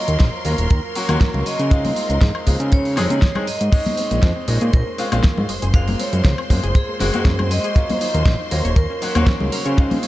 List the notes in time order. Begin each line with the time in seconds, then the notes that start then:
Already playing: F#3 A#3 C#4 F4 A#4 D#5 C6
0.08 D#2, closed hi-hat, cabasa
0.19 A#1 C5, kick, snare, closed hi-hat, cabasa
0.45 D#2 F#3 A#3 C#4 F4 A#4, open hi-hat, high conga, cabasa
0.58 D#1, closed hi-hat, cabasa
0.70 D#2 A#4, kick, closed hi-hat, cabasa
0.95 F#3 A#3 C#4 F#4, open hi-hat, cabasa
1.08 D#2 F#3 A#3 C#4 F#4, closed hi-hat, high conga, cabasa, high woodblock
1.21 kick, snare, closed hi-hat, cabasa
1.34 C#2, low conga
1.46 C#3 D#5, open hi-hat, cabasa
1.59 C#3, closed hi-hat, cabasa
1.70 G#3 C4 D#4 F4, kick, closed hi-hat, cabasa
1.85 open hi-hat, high conga, low conga
1.96 open hi-hat, cabasa
2.10 C#2, closed hi-hat, cabasa
2.21 G#2 C5, kick, snare, closed hi-hat, cabasa
2.35 high woodblock
2.46 C#2 G#3 C4 D#4 F4, kick, open hi-hat, high conga, cabasa
2.60 C#3, closed hi-hat, cabasa
2.72 C#5, kick, closed hi-hat, cabasa
2.85 open hi-hat
2.97 F2 C3 G#3 D#4 G#4, snare, open hi-hat, cabasa, high woodblock
3.10 C#3, closed hi-hat, high conga, cabasa
3.22 kick, snare, closed hi-hat, cabasa
3.35 G#3 C4 D#4 G#4, low conga, high woodblock
3.47 G#2 D#5, open hi-hat, cabasa
3.61 G#2, closed hi-hat, cabasa
3.72 G#3 C4 C#4 D#4 C5 C6, kick, closed hi-hat, crash, cabasa
3.86 A#3, open hi-hat, high conga, low conga
3.97 C4, open hi-hat, cabasa
4.11 A#1 G#3, closed hi-hat, cabasa
4.22 F2 A#3 C5, kick, snare, closed hi-hat, cabasa
4.36 C4
4.48 A#1 G#3 C4 C#4 D#4 A#4, open hi-hat, high conga, cabasa
4.61 A#2 G#4, closed hi-hat, cabasa
4.73 A#1 G#3 A#4, kick, closed hi-hat, cabasa
4.87 A#3
4.98 G#3 C4 C#4 F4, open hi-hat, cabasa
5.12 A#1 G#3 C4 C#4 F4, closed hi-hat, high conga, cabasa, high woodblock
5.23 A#3, kick, snare, closed hi-hat, cabasa
5.37 G#2 C4, low conga
5.49 F#1 G#3, open hi-hat, cabasa
5.62 F#1 G#4, closed hi-hat, cabasa
5.74 G#3 A#3 C4 F4 F5, kick, closed hi-hat, cabasa
5.88 A#3, open hi-hat, high conga, low conga
5.99 C4 C#5, open hi-hat, cabasa
6.13 F#2 G#3, closed hi-hat, cabasa
6.24 C#2 A#3 C5, kick, snare, closed hi-hat, cabasa
6.38 C4, high woodblock
6.50 F#2 G#3 A#3 C4 F4, kick, open hi-hat, high conga, cabasa
6.63 F#1 G#4, closed hi-hat, cabasa
6.75 G#3 G#4, kick, closed hi-hat, cabasa
6.89 A#3
7.00 F#1 G#3 A#3 C4 F#4 G#4, snare, open hi-hat, cabasa
7.13 F#2 G#3 A#3 C4 F#4, closed hi-hat, high conga, cabasa
7.25 F#2 A#3, kick, snare, closed hi-hat, cabasa
7.39 C4, low conga, high woodblock
7.51 G#3 D#5, open hi-hat, cabasa
7.64 G#4, closed hi-hat, cabasa
7.75 F#3 A#3 C#4 F4, kick, closed hi-hat, cabasa
7.89 C#4, open hi-hat, high conga, low conga
8.01 D#4, open hi-hat, cabasa
8.14 D#2 A#3, closed hi-hat, cabasa
8.26 A#1 C#4 C5, kick, snare, closed hi-hat, cabasa
8.40 D#4
8.51 D#2 F#3 A#3 C#4 F4 A#4, open hi-hat, high conga, cabasa
8.65 D#1 C#5, closed hi-hat, cabasa
8.76 D#2 A#3 A#4, kick, closed hi-hat, cabasa
8.90 C#4
9.02 F#3 A#3 C#4 D#4 F#4, open hi-hat, cabasa
9.15 D#2 F#3 A#3 C#4 F#4, closed hi-hat, high conga, cabasa, high woodblock
9.27 C#4, kick, snare, closed hi-hat, cabasa
9.40 C#2 D#4, low conga
9.52 C#3 A#3 F5, open hi-hat, cabasa
9.65 C#3 C#5, closed hi-hat, cabasa
9.77 G#3 C4 D#4 F4, kick, closed hi-hat, cabasa
9.91 C4, open hi-hat, high conga, low conga
10.03 C#4, open hi-hat, cabasa